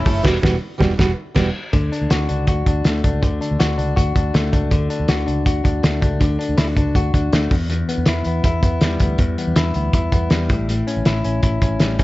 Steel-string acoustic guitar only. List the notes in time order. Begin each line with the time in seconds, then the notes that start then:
0.05 A3 C#4 E4 A4
0.23 E3 G3 B3 F#4
0.41 E3 G3 B3 F#4
0.78 E3 G3 B3 F#4
0.97 E3 G3 B3 F#4
1.35 E3 G3 B3 F#4